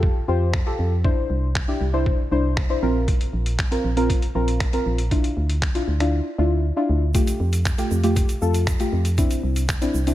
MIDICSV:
0, 0, Header, 1, 4, 480
1, 0, Start_track
1, 0, Tempo, 508475
1, 986, Time_signature, 4, 2, 24, 8
1, 9574, End_track
2, 0, Start_track
2, 0, Title_t, "Synth stab"
2, 0, Program_c, 0, 62
2, 0, Note_on_c, 0, 65, 84
2, 0, Note_on_c, 0, 67, 79
2, 0, Note_on_c, 0, 69, 96
2, 159, Note_off_c, 0, 65, 0
2, 160, Note_off_c, 0, 67, 0
2, 161, Note_off_c, 0, 69, 0
2, 264, Note_on_c, 0, 65, 89
2, 267, Note_on_c, 0, 67, 81
2, 269, Note_on_c, 0, 72, 92
2, 519, Note_off_c, 0, 65, 0
2, 521, Note_off_c, 0, 67, 0
2, 522, Note_off_c, 0, 72, 0
2, 625, Note_on_c, 0, 65, 84
2, 626, Note_on_c, 0, 67, 80
2, 629, Note_on_c, 0, 69, 97
2, 880, Note_off_c, 0, 65, 0
2, 880, Note_off_c, 0, 67, 0
2, 882, Note_off_c, 0, 69, 0
2, 983, Note_on_c, 0, 62, 87
2, 986, Note_on_c, 0, 64, 77
2, 988, Note_on_c, 0, 72, 97
2, 1408, Note_off_c, 0, 62, 0
2, 1409, Note_off_c, 0, 64, 0
2, 1411, Note_off_c, 0, 72, 0
2, 1586, Note_on_c, 0, 62, 91
2, 1587, Note_on_c, 0, 64, 76
2, 1590, Note_on_c, 0, 67, 95
2, 1755, Note_off_c, 0, 62, 0
2, 1756, Note_off_c, 0, 64, 0
2, 1757, Note_off_c, 0, 67, 0
2, 1825, Note_on_c, 0, 62, 85
2, 1827, Note_on_c, 0, 64, 75
2, 1829, Note_on_c, 0, 72, 93
2, 2080, Note_off_c, 0, 62, 0
2, 2081, Note_off_c, 0, 64, 0
2, 2082, Note_off_c, 0, 72, 0
2, 2184, Note_on_c, 0, 62, 87
2, 2187, Note_on_c, 0, 64, 79
2, 2190, Note_on_c, 0, 72, 97
2, 2439, Note_off_c, 0, 62, 0
2, 2441, Note_off_c, 0, 64, 0
2, 2442, Note_off_c, 0, 72, 0
2, 2544, Note_on_c, 0, 62, 88
2, 2547, Note_on_c, 0, 64, 80
2, 2549, Note_on_c, 0, 72, 98
2, 2665, Note_off_c, 0, 62, 0
2, 2665, Note_on_c, 0, 60, 88
2, 2667, Note_off_c, 0, 64, 0
2, 2667, Note_on_c, 0, 65, 87
2, 2668, Note_off_c, 0, 72, 0
2, 2669, Note_on_c, 0, 70, 103
2, 3338, Note_off_c, 0, 60, 0
2, 3339, Note_off_c, 0, 65, 0
2, 3340, Note_off_c, 0, 70, 0
2, 3504, Note_on_c, 0, 60, 89
2, 3506, Note_on_c, 0, 65, 79
2, 3509, Note_on_c, 0, 70, 94
2, 3674, Note_off_c, 0, 60, 0
2, 3676, Note_off_c, 0, 65, 0
2, 3677, Note_off_c, 0, 70, 0
2, 3744, Note_on_c, 0, 60, 85
2, 3747, Note_on_c, 0, 65, 78
2, 3749, Note_on_c, 0, 70, 98
2, 3999, Note_off_c, 0, 60, 0
2, 4001, Note_off_c, 0, 65, 0
2, 4002, Note_off_c, 0, 70, 0
2, 4105, Note_on_c, 0, 60, 84
2, 4107, Note_on_c, 0, 65, 82
2, 4110, Note_on_c, 0, 70, 95
2, 4360, Note_off_c, 0, 60, 0
2, 4361, Note_off_c, 0, 65, 0
2, 4362, Note_off_c, 0, 70, 0
2, 4466, Note_on_c, 0, 60, 85
2, 4467, Note_on_c, 0, 65, 80
2, 4470, Note_on_c, 0, 70, 94
2, 4720, Note_off_c, 0, 60, 0
2, 4721, Note_off_c, 0, 65, 0
2, 4722, Note_off_c, 0, 70, 0
2, 4827, Note_on_c, 0, 62, 85
2, 4829, Note_on_c, 0, 64, 80
2, 4831, Note_on_c, 0, 65, 90
2, 5250, Note_off_c, 0, 62, 0
2, 5251, Note_off_c, 0, 64, 0
2, 5252, Note_off_c, 0, 65, 0
2, 5425, Note_on_c, 0, 62, 84
2, 5428, Note_on_c, 0, 64, 80
2, 5429, Note_on_c, 0, 65, 99
2, 5595, Note_off_c, 0, 62, 0
2, 5596, Note_off_c, 0, 64, 0
2, 5597, Note_off_c, 0, 65, 0
2, 5666, Note_on_c, 0, 62, 86
2, 5668, Note_on_c, 0, 64, 79
2, 5671, Note_on_c, 0, 65, 92
2, 5920, Note_off_c, 0, 62, 0
2, 5921, Note_off_c, 0, 64, 0
2, 5923, Note_off_c, 0, 65, 0
2, 6025, Note_on_c, 0, 62, 85
2, 6028, Note_on_c, 0, 64, 78
2, 6030, Note_on_c, 0, 65, 96
2, 6280, Note_off_c, 0, 62, 0
2, 6281, Note_off_c, 0, 64, 0
2, 6282, Note_off_c, 0, 65, 0
2, 6385, Note_on_c, 0, 62, 86
2, 6388, Note_on_c, 0, 64, 81
2, 6390, Note_on_c, 0, 65, 91
2, 6640, Note_off_c, 0, 62, 0
2, 6641, Note_off_c, 0, 64, 0
2, 6642, Note_off_c, 0, 65, 0
2, 6745, Note_on_c, 0, 57, 86
2, 6747, Note_on_c, 0, 65, 77
2, 6749, Note_on_c, 0, 67, 89
2, 7169, Note_off_c, 0, 57, 0
2, 7170, Note_off_c, 0, 65, 0
2, 7171, Note_off_c, 0, 67, 0
2, 7345, Note_on_c, 0, 57, 92
2, 7347, Note_on_c, 0, 65, 81
2, 7350, Note_on_c, 0, 67, 98
2, 7515, Note_off_c, 0, 57, 0
2, 7516, Note_off_c, 0, 65, 0
2, 7517, Note_off_c, 0, 67, 0
2, 7584, Note_on_c, 0, 57, 85
2, 7586, Note_on_c, 0, 65, 78
2, 7589, Note_on_c, 0, 67, 98
2, 7839, Note_off_c, 0, 57, 0
2, 7840, Note_off_c, 0, 65, 0
2, 7842, Note_off_c, 0, 67, 0
2, 7945, Note_on_c, 0, 57, 83
2, 7947, Note_on_c, 0, 65, 77
2, 7948, Note_on_c, 0, 69, 95
2, 8200, Note_off_c, 0, 57, 0
2, 8201, Note_off_c, 0, 65, 0
2, 8201, Note_off_c, 0, 69, 0
2, 8304, Note_on_c, 0, 57, 90
2, 8305, Note_on_c, 0, 65, 77
2, 8308, Note_on_c, 0, 67, 94
2, 8559, Note_off_c, 0, 57, 0
2, 8560, Note_off_c, 0, 65, 0
2, 8561, Note_off_c, 0, 67, 0
2, 8665, Note_on_c, 0, 60, 85
2, 8667, Note_on_c, 0, 62, 75
2, 8670, Note_on_c, 0, 64, 96
2, 9089, Note_off_c, 0, 60, 0
2, 9090, Note_off_c, 0, 62, 0
2, 9091, Note_off_c, 0, 64, 0
2, 9264, Note_on_c, 0, 60, 89
2, 9266, Note_on_c, 0, 62, 81
2, 9269, Note_on_c, 0, 64, 96
2, 9435, Note_off_c, 0, 60, 0
2, 9436, Note_off_c, 0, 62, 0
2, 9437, Note_off_c, 0, 64, 0
2, 9505, Note_on_c, 0, 60, 85
2, 9507, Note_on_c, 0, 62, 77
2, 9509, Note_on_c, 0, 64, 90
2, 9574, Note_off_c, 0, 60, 0
2, 9574, Note_off_c, 0, 62, 0
2, 9574, Note_off_c, 0, 64, 0
2, 9574, End_track
3, 0, Start_track
3, 0, Title_t, "FM bass"
3, 0, Program_c, 1, 39
3, 0, Note_on_c, 1, 41, 89
3, 102, Note_off_c, 1, 41, 0
3, 267, Note_on_c, 1, 41, 100
3, 582, Note_off_c, 1, 41, 0
3, 746, Note_on_c, 1, 41, 98
3, 1062, Note_off_c, 1, 41, 0
3, 1226, Note_on_c, 1, 36, 89
3, 1542, Note_off_c, 1, 36, 0
3, 1706, Note_on_c, 1, 36, 93
3, 2022, Note_off_c, 1, 36, 0
3, 2185, Note_on_c, 1, 36, 97
3, 2501, Note_off_c, 1, 36, 0
3, 2667, Note_on_c, 1, 34, 99
3, 2982, Note_off_c, 1, 34, 0
3, 3147, Note_on_c, 1, 34, 94
3, 3462, Note_off_c, 1, 34, 0
3, 3627, Note_on_c, 1, 34, 97
3, 3943, Note_off_c, 1, 34, 0
3, 4107, Note_on_c, 1, 34, 103
3, 4423, Note_off_c, 1, 34, 0
3, 4587, Note_on_c, 1, 34, 97
3, 4903, Note_off_c, 1, 34, 0
3, 5068, Note_on_c, 1, 38, 87
3, 5383, Note_off_c, 1, 38, 0
3, 5547, Note_on_c, 1, 38, 96
3, 5863, Note_off_c, 1, 38, 0
3, 6027, Note_on_c, 1, 38, 96
3, 6343, Note_off_c, 1, 38, 0
3, 6507, Note_on_c, 1, 38, 99
3, 6823, Note_off_c, 1, 38, 0
3, 6986, Note_on_c, 1, 41, 91
3, 7302, Note_off_c, 1, 41, 0
3, 7467, Note_on_c, 1, 41, 93
3, 7782, Note_off_c, 1, 41, 0
3, 7946, Note_on_c, 1, 41, 95
3, 8262, Note_off_c, 1, 41, 0
3, 8426, Note_on_c, 1, 41, 98
3, 8742, Note_off_c, 1, 41, 0
3, 8906, Note_on_c, 1, 36, 92
3, 9222, Note_off_c, 1, 36, 0
3, 9386, Note_on_c, 1, 36, 95
3, 9574, Note_off_c, 1, 36, 0
3, 9574, End_track
4, 0, Start_track
4, 0, Title_t, "Drums"
4, 27, Note_on_c, 9, 36, 104
4, 121, Note_off_c, 9, 36, 0
4, 505, Note_on_c, 9, 26, 114
4, 506, Note_on_c, 9, 36, 105
4, 599, Note_off_c, 9, 26, 0
4, 601, Note_off_c, 9, 36, 0
4, 986, Note_on_c, 9, 36, 108
4, 1081, Note_off_c, 9, 36, 0
4, 1466, Note_on_c, 9, 26, 104
4, 1467, Note_on_c, 9, 36, 102
4, 1561, Note_off_c, 9, 26, 0
4, 1561, Note_off_c, 9, 36, 0
4, 1947, Note_on_c, 9, 36, 98
4, 2042, Note_off_c, 9, 36, 0
4, 2426, Note_on_c, 9, 26, 121
4, 2427, Note_on_c, 9, 36, 110
4, 2520, Note_off_c, 9, 26, 0
4, 2521, Note_off_c, 9, 36, 0
4, 2907, Note_on_c, 9, 36, 113
4, 2907, Note_on_c, 9, 42, 66
4, 3001, Note_off_c, 9, 36, 0
4, 3001, Note_off_c, 9, 42, 0
4, 3028, Note_on_c, 9, 42, 52
4, 3122, Note_off_c, 9, 42, 0
4, 3267, Note_on_c, 9, 42, 56
4, 3361, Note_off_c, 9, 42, 0
4, 3386, Note_on_c, 9, 26, 105
4, 3387, Note_on_c, 9, 36, 106
4, 3388, Note_on_c, 9, 42, 64
4, 3480, Note_off_c, 9, 26, 0
4, 3482, Note_off_c, 9, 36, 0
4, 3483, Note_off_c, 9, 42, 0
4, 3510, Note_on_c, 9, 42, 54
4, 3604, Note_off_c, 9, 42, 0
4, 3747, Note_on_c, 9, 42, 48
4, 3842, Note_off_c, 9, 42, 0
4, 3868, Note_on_c, 9, 36, 105
4, 3870, Note_on_c, 9, 42, 78
4, 3962, Note_off_c, 9, 36, 0
4, 3965, Note_off_c, 9, 42, 0
4, 3987, Note_on_c, 9, 42, 49
4, 4082, Note_off_c, 9, 42, 0
4, 4228, Note_on_c, 9, 42, 50
4, 4322, Note_off_c, 9, 42, 0
4, 4346, Note_on_c, 9, 26, 118
4, 4346, Note_on_c, 9, 42, 74
4, 4347, Note_on_c, 9, 36, 104
4, 4440, Note_off_c, 9, 26, 0
4, 4440, Note_off_c, 9, 42, 0
4, 4441, Note_off_c, 9, 36, 0
4, 4466, Note_on_c, 9, 42, 47
4, 4561, Note_off_c, 9, 42, 0
4, 4705, Note_on_c, 9, 42, 57
4, 4799, Note_off_c, 9, 42, 0
4, 4827, Note_on_c, 9, 36, 106
4, 4827, Note_on_c, 9, 42, 68
4, 4921, Note_off_c, 9, 36, 0
4, 4922, Note_off_c, 9, 42, 0
4, 4947, Note_on_c, 9, 42, 54
4, 5042, Note_off_c, 9, 42, 0
4, 5187, Note_on_c, 9, 42, 55
4, 5282, Note_off_c, 9, 42, 0
4, 5306, Note_on_c, 9, 26, 99
4, 5307, Note_on_c, 9, 36, 99
4, 5308, Note_on_c, 9, 42, 63
4, 5401, Note_off_c, 9, 26, 0
4, 5401, Note_off_c, 9, 36, 0
4, 5403, Note_off_c, 9, 42, 0
4, 5429, Note_on_c, 9, 42, 54
4, 5524, Note_off_c, 9, 42, 0
4, 5667, Note_on_c, 9, 42, 51
4, 5668, Note_on_c, 9, 26, 64
4, 5761, Note_off_c, 9, 42, 0
4, 5762, Note_off_c, 9, 26, 0
4, 6745, Note_on_c, 9, 82, 63
4, 6746, Note_on_c, 9, 36, 107
4, 6746, Note_on_c, 9, 42, 68
4, 6840, Note_off_c, 9, 42, 0
4, 6840, Note_off_c, 9, 82, 0
4, 6841, Note_off_c, 9, 36, 0
4, 6866, Note_on_c, 9, 82, 58
4, 6867, Note_on_c, 9, 42, 54
4, 6960, Note_off_c, 9, 82, 0
4, 6961, Note_off_c, 9, 42, 0
4, 7106, Note_on_c, 9, 42, 55
4, 7107, Note_on_c, 9, 82, 51
4, 7200, Note_off_c, 9, 42, 0
4, 7202, Note_off_c, 9, 82, 0
4, 7226, Note_on_c, 9, 26, 98
4, 7226, Note_on_c, 9, 36, 102
4, 7227, Note_on_c, 9, 82, 70
4, 7228, Note_on_c, 9, 42, 63
4, 7320, Note_off_c, 9, 26, 0
4, 7321, Note_off_c, 9, 36, 0
4, 7321, Note_off_c, 9, 82, 0
4, 7322, Note_off_c, 9, 42, 0
4, 7347, Note_on_c, 9, 82, 47
4, 7348, Note_on_c, 9, 42, 54
4, 7442, Note_off_c, 9, 82, 0
4, 7443, Note_off_c, 9, 42, 0
4, 7469, Note_on_c, 9, 82, 53
4, 7563, Note_off_c, 9, 82, 0
4, 7585, Note_on_c, 9, 42, 46
4, 7589, Note_on_c, 9, 82, 49
4, 7679, Note_off_c, 9, 42, 0
4, 7683, Note_off_c, 9, 82, 0
4, 7706, Note_on_c, 9, 36, 105
4, 7706, Note_on_c, 9, 82, 65
4, 7708, Note_on_c, 9, 42, 84
4, 7800, Note_off_c, 9, 82, 0
4, 7801, Note_off_c, 9, 36, 0
4, 7802, Note_off_c, 9, 42, 0
4, 7826, Note_on_c, 9, 42, 48
4, 7826, Note_on_c, 9, 82, 46
4, 7920, Note_off_c, 9, 42, 0
4, 7920, Note_off_c, 9, 82, 0
4, 7946, Note_on_c, 9, 82, 49
4, 8041, Note_off_c, 9, 82, 0
4, 8063, Note_on_c, 9, 82, 53
4, 8066, Note_on_c, 9, 42, 51
4, 8157, Note_off_c, 9, 82, 0
4, 8160, Note_off_c, 9, 42, 0
4, 8184, Note_on_c, 9, 26, 122
4, 8184, Note_on_c, 9, 42, 75
4, 8186, Note_on_c, 9, 36, 106
4, 8187, Note_on_c, 9, 82, 68
4, 8279, Note_off_c, 9, 26, 0
4, 8279, Note_off_c, 9, 42, 0
4, 8280, Note_off_c, 9, 36, 0
4, 8282, Note_off_c, 9, 82, 0
4, 8305, Note_on_c, 9, 42, 50
4, 8308, Note_on_c, 9, 82, 43
4, 8399, Note_off_c, 9, 42, 0
4, 8402, Note_off_c, 9, 82, 0
4, 8542, Note_on_c, 9, 42, 60
4, 8547, Note_on_c, 9, 82, 50
4, 8637, Note_off_c, 9, 42, 0
4, 8641, Note_off_c, 9, 82, 0
4, 8665, Note_on_c, 9, 36, 115
4, 8665, Note_on_c, 9, 42, 65
4, 8665, Note_on_c, 9, 82, 66
4, 8759, Note_off_c, 9, 42, 0
4, 8759, Note_off_c, 9, 82, 0
4, 8760, Note_off_c, 9, 36, 0
4, 8785, Note_on_c, 9, 42, 56
4, 8785, Note_on_c, 9, 82, 55
4, 8879, Note_off_c, 9, 42, 0
4, 8879, Note_off_c, 9, 82, 0
4, 9026, Note_on_c, 9, 42, 57
4, 9026, Note_on_c, 9, 82, 51
4, 9120, Note_off_c, 9, 42, 0
4, 9120, Note_off_c, 9, 82, 0
4, 9145, Note_on_c, 9, 26, 108
4, 9145, Note_on_c, 9, 82, 72
4, 9146, Note_on_c, 9, 36, 106
4, 9147, Note_on_c, 9, 42, 61
4, 9239, Note_off_c, 9, 82, 0
4, 9240, Note_off_c, 9, 26, 0
4, 9240, Note_off_c, 9, 36, 0
4, 9242, Note_off_c, 9, 42, 0
4, 9266, Note_on_c, 9, 82, 48
4, 9269, Note_on_c, 9, 42, 55
4, 9361, Note_off_c, 9, 82, 0
4, 9363, Note_off_c, 9, 42, 0
4, 9388, Note_on_c, 9, 82, 56
4, 9482, Note_off_c, 9, 82, 0
4, 9506, Note_on_c, 9, 42, 48
4, 9508, Note_on_c, 9, 82, 50
4, 9574, Note_off_c, 9, 42, 0
4, 9574, Note_off_c, 9, 82, 0
4, 9574, End_track
0, 0, End_of_file